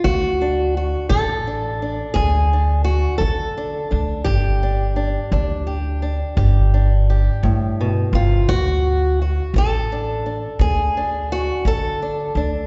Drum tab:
BD |o--o--o--o--|o--o--o--o--|o--o--o--o--|